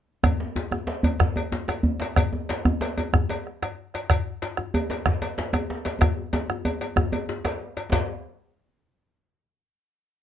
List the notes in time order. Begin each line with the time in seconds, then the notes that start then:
0.23 bombo rim, bombo low, cowbell, djembe slap, djembe bass
0.40 djembe slap
0.56 djembe slap, djembe tone
0.71 bombo rim, djembe slap, djembe tone
0.87 djembe slap
1.03 cowbell, djembe slap, djembe bass
1.20 bombo rim, bombo low, djembe slap, djembe bass
1.36 cowbell, djembe slap, djembe tone
1.52 bombo rim, djembe slap, djembe tone
1.68 bombo rim, cowbell, djembe slap, djembe tone
1.83 djembe bass
2.00 bombo rim, djembe slap
2.02 cowbell, djembe slap
2.16 bombo rim, bombo low, cowbell, djembe slap, djembe tone, djembe bass
2.33 djembe tone
2.49 cowbell, djembe slap
2.65 bombo rim, djembe slap, djembe tone, djembe bass
2.81 cowbell, djembe slap
2.97 cowbell, djembe slap, djembe tone
3.13 bombo rim, bombo low, djembe slap, djembe tone, djembe bass
3.29 cowbell, djembe slap
3.47 bombo rim
3.62 bombo rim, cowbell, djembe slap, djembe tone
3.94 bombo rim, cowbell, djembe slap
4.10 bombo rim, bombo low, cowbell, djembe slap, djembe bass
4.42 cowbell, djembe slap
4.57 bombo rim, djembe slap, djembe tone
4.74 cowbell, djembe tone
4.90 cowbell, djembe slap
5.06 bombo rim, bombo low, djembe slap, djembe bass
5.22 cowbell, djembe slap
5.38 bombo rim, djembe slap
5.53 bombo rim, cowbell, djembe slap, djembe tone
5.70 djembe slap
5.85 bombo rim, cowbell, djembe slap
6.01 bombo rim, bombo low, cowbell, djembe tone, djembe bass
6.18 djembe slap
6.33 bombo rim, cowbell, djembe slap, djembe tone
6.50 bombo rim, djembe tone
6.65 cowbell, djembe tone
6.81 bombo rim, cowbell, djembe slap
6.96 bombo rim, bombo low, djembe tone, djembe bass
7.12 cowbell, djembe slap, djembe tone
7.29 djembe slap
7.45 bombo rim, cowbell, djembe slap, djembe tone
7.77 cowbell, djembe slap
7.92 bombo low, cowbell, djembe slap, djembe bass